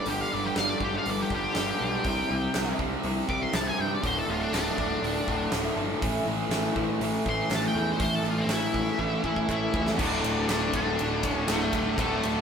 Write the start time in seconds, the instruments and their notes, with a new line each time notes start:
0.05 picked electric bass G1, steel-string acoustic guitar G2 D3 G3 B3 D4 G4, lead electric guitar G4, open hi-hat
0.21 lead electric guitar F5
0.29 picked electric bass G1, overdriven electric guitar G2 D3, steel-string acoustic guitar G3 B3 D4 G4
0.33 lead electric guitar D5
0.45 lead electric guitar G4
0.55 picked electric bass G1, steel-string acoustic guitar G2 D3 G3 B3 D4 G4, lead electric guitar F5, snare, open hi-hat
0.70 lead electric guitar D5
0.80 picked electric bass G1, overdriven electric guitar G2 D3, steel-string acoustic guitar G3 B3 D4 G4, kick
0.84 lead electric guitar G4
0.93 steel-string acoustic guitar G3 B3 D4 G4
0.98 lead electric guitar F5
1.06 picked electric bass G1, overdriven electric guitar G2 D3 G3, open hi-hat
1.10 lead electric guitar D5
1.21 lead electric guitar G4
1.30 picked electric bass G1, overdriven electric guitar G2 D3, steel-string acoustic guitar G3 B3 D4 G4, kick
1.35 lead electric guitar G4
1.55 picked electric bass G1, steel-string acoustic guitar G2 D3 G3 B3 D4 G4, snare, open hi-hat
1.79 picked electric bass B1, overdriven electric guitar G2 D3, steel-string acoustic guitar G3 B3 D4
1.94 steel-string acoustic guitar G3 B3 D4 G4
2.04 picked electric bass C2, steel-string acoustic guitar C3 E3 G3 E4 G4, overdriven electric guitar C4, kick, open hi-hat
2.29 picked electric bass C2, overdriven electric guitar C3 C4, steel-string acoustic guitar E3 G3 E4 G4
2.54 picked electric bass C2, steel-string acoustic guitar C3 E3 G3 E4 G4, overdriven electric guitar C4, snare, clap, open hi-hat
2.78 picked electric bass C2, overdriven electric guitar C3 C4, steel-string acoustic guitar E3 G3 E4 G4, kick
2.91 steel-string acoustic guitar G3 E4 G4
3.03 picked electric bass C2, overdriven electric guitar C3 G3 C4, open hi-hat
3.27 picked electric bass C2, overdriven electric guitar C3 G3 C4, steel-string acoustic guitar E4 G4, lead electric guitar D6, kick
3.43 lead electric guitar C6
3.53 picked electric bass C2, steel-string acoustic guitar C3 E3 G3 E4 G4, overdriven electric guitar C4, lead electric guitar A5, snare, clap, open hi-hat
3.68 lead electric guitar G#5
3.78 picked electric bass G2, overdriven electric guitar C3 C4, steel-string acoustic guitar E3 G3 E4 G4, lead electric guitar G5
3.93 steel-string acoustic guitar G3, lead electric guitar D5
4.03 picked electric bass D1, overdriven electric guitar D2 A2, steel-string acoustic guitar D3 A3 D4 F#4, lead electric guitar C5, kick, open hi-hat
4.19 lead electric guitar A4
4.27 picked electric bass D1, overdriven electric guitar D2 A2, steel-string acoustic guitar D3 A3 D4 F#4, lead electric guitar F4
4.42 lead electric guitar D4
4.52 picked electric bass D1, overdriven electric guitar D2 A2, steel-string acoustic guitar D3 A3 D4 F#4, lead electric guitar D4, snare, clap, open hi-hat
4.77 picked electric bass D1, overdriven electric guitar D2 A2, steel-string acoustic guitar D3 A3 D4 F#4, kick
4.91 steel-string acoustic guitar A3 D4 F#4
5.02 picked electric bass D1, overdriven electric guitar D2 A2 D3, open hi-hat
5.27 picked electric bass D1, overdriven electric guitar D2 A2, steel-string acoustic guitar D3 A3 D4 F#4, kick
5.52 picked electric bass D1, overdriven electric guitar D2 A2, steel-string acoustic guitar D3 A3 D4 F#4, snare, clap, open hi-hat
5.77 picked electric bass G1, overdriven electric guitar D2 A2, steel-string acoustic guitar D3 A3 D4 F#4
5.89 steel-string acoustic guitar A3 D4 F#4
6.02 picked electric bass A1, steel-string acoustic guitar A2 E3 A3 C#4 E4, kick, open hi-hat
6.26 picked electric bass A1, overdriven electric guitar A2, steel-string acoustic guitar E3 A3 C#4 E4
6.49 picked electric bass A1, steel-string acoustic guitar A2 E3 A3 C#4 E4, snare, clap, open hi-hat
6.76 picked electric bass A1, overdriven electric guitar A2, steel-string acoustic guitar E3 A3 C#4 E4, kick
6.90 steel-string acoustic guitar A3 C#4 E4
7.00 picked electric bass A1, overdriven electric guitar A2 E3 A3, open hi-hat
7.26 picked electric bass A1, overdriven electric guitar A2, steel-string acoustic guitar E3 A3 C#4 E4, lead electric guitar C6, kick
7.42 lead electric guitar C6
7.50 picked electric bass A1, steel-string acoustic guitar A2 E3 A3 C#4 E4, snare, clap, open hi-hat
7.55 lead electric guitar A5
7.68 lead electric guitar G5
7.75 picked electric bass E2, overdriven electric guitar A2, steel-string acoustic guitar E3 A3 C#4 E4, lead electric guitar G5
7.86 steel-string acoustic guitar A3 C#4 E4
7.92 lead electric guitar C5
7.99 picked electric bass A1, steel-string acoustic guitar A2 E3 A3 C#4 E4, kick, open hi-hat
8.04 lead electric guitar C5
8.15 lead electric guitar A4
8.23 picked electric bass A1, overdriven electric guitar A2, steel-string acoustic guitar E3 A3 C#4 E4, clap
8.30 lead electric guitar F4
8.40 lead electric guitar C4
8.47 picked electric bass A1, steel-string acoustic guitar A2 E3 A3 C#4 E4, snare, clap, open hi-hat
8.52 lead electric guitar E4
8.73 picked electric bass A1, overdriven electric guitar A2, steel-string acoustic guitar E3 A3 C#4 E4, kick
8.85 steel-string acoustic guitar A3 C#4 E4
8.99 picked electric bass A1, overdriven electric guitar A2 E3 A3, kick
9.23 picked electric bass A1, overdriven electric guitar A2, steel-string acoustic guitar E3 A3 C#4 E4, kick
9.36 kick
9.48 picked electric bass A1, steel-string acoustic guitar A2 E3 A3 C#4 E4, lead electric guitar E4, kick, clap
9.74 picked electric bass C#2, overdriven electric guitar A2, steel-string acoustic guitar E3 A3 C#4 E4, kick
9.86 steel-string acoustic guitar A3 C#4 E4, snare
9.92 lead electric guitar B3
9.98 picked electric bass D1, overdriven electric guitar D2 A2, steel-string acoustic guitar D3 A3 D4 F#4, distorted electric guitar D3, lead electric guitar D4, kick, crash
10.24 picked electric bass D1, steel-string acoustic guitar D3 A3 D4 F#4, ride
10.37 steel-string acoustic guitar A3 D4 F#4
10.48 picked electric bass D1, overdriven electric guitar A2, steel-string acoustic guitar D3 A3 D4 F#4, lead electric guitar D4, snare, clap, ride
10.73 picked electric bass D1, overdriven electric guitar D2 A2, steel-string acoustic guitar D3 A3 D4 F#4, lead electric guitar D4, kick, ride
10.87 steel-string acoustic guitar A3 D4 F#4
10.99 picked electric bass D1, overdriven electric guitar D2 A2 D3 A3 F#4, ride
11.11 steel-string acoustic guitar A3 D4 F#4
11.23 picked electric bass D1, steel-string acoustic guitar D3 A3 D4 F#4, kick, ride
11.29 lead electric guitar C#4
11.36 steel-string acoustic guitar A3 D4 F#4
11.48 picked electric bass D1, overdriven electric guitar D2 A2, steel-string acoustic guitar D3 A3 D4 F#4, lead electric guitar A3, snare, clap, ride
11.60 snare
11.73 picked electric bass D1, overdriven electric guitar D3 A3 F#4, kick, ride
11.86 steel-string acoustic guitar A3 D4 F#4
11.97 picked electric bass D1, overdriven electric guitar D2 A2, steel-string acoustic guitar D3 A3 D4 F#4, distorted electric guitar D3, lead electric guitar A3, kick, ride
12.23 picked electric bass D1, steel-string acoustic guitar D3 A3 D4 F#4, ride
12.36 steel-string acoustic guitar A3 D4 F#4